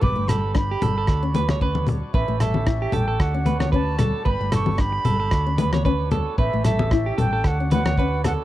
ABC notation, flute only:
X:1
M:4/4
L:1/8
Q:"Swing 16ths" 1/4=113
K:D
V:1 name="Flute"
d' b b4 z2 | e e2 g f2 a2 | b c' b4 z2 | e e2 g f f2 f |]